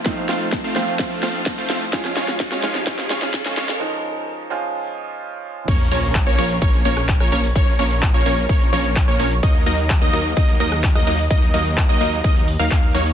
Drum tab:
CC |----------------|----------------|----------------|x---------------|
HH |xxoxxxoxxxoxxxox|xxoxxxoxxxoxxxox|----------------|xxoxxxoxxxoxxxoo|
CP |----------------|----------------|----------------|----x-------x---|
SD |o-o-o-o-o-o-o-o-|oooooooooooooooo|----------------|-----------r-r--|
BD |o---o---o---o---|o---o---o---o---|----------------|o---o---o---o---|

CC |----------------|----------------|----------------|
HH |xxoxxxoxxxoxxxox|xxoxxxoxxxoxxxoo|xxoxxxoxxxoxxxox|
CP |----x-------x---|----x-------x---|----x-------x---|
SD |----------------|-----------r-r--|----------------|
BD |o---o---o---o---|o---o---o---o---|o---o---o---o---|